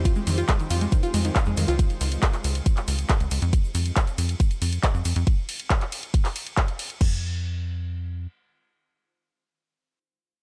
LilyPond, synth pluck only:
\new Staff \with { instrumentName = "Synth pluck" } { \clef bass \time 4/4 \key f \minor \tempo 4 = 138 f'16 aes16 ees16 f'16 aes16 ees16 f'16 aes16 ees16 f'16 aes16 ees16 f'16 aes16 ees16 f'16 | r1 | r1 | r1 |
r1 | r1 | }